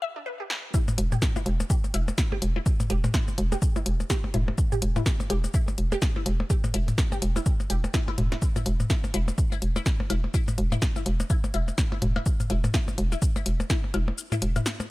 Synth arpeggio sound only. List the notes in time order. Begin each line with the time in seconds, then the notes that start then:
0.02 E5
0.16 D4
0.26 B4
0.40 G4
0.74 E4
1.12 G4
1.36 E4
1.70 G4
1.94 E4
2.32 G4
2.56 E4
2.90 G4
3.14 E4
3.52 G4
3.76 E4
4.10 G4
4.34 E4
4.72 G4
4.96 E4
5.30 G4
5.54 E4
5.92 G4
6.16 E4
6.50 G4
6.74 E4
7.12 G4
7.36 E4
7.70 G4
7.94 E4
8.08 E4
8.32 E4
8.56 E4
8.90 E4
9.14 E4
9.52 E4
9.76 E4
10.10 E4
10.34 E4
10.72 E4
10.96 E4
11.30 E4
11.54 E4
11.92 E4
12.16 E4
12.50 E4
12.74 E4
13.12 E4
13.36 E4
13.70 E4
13.94 E4
14.32 E4
14.56 E4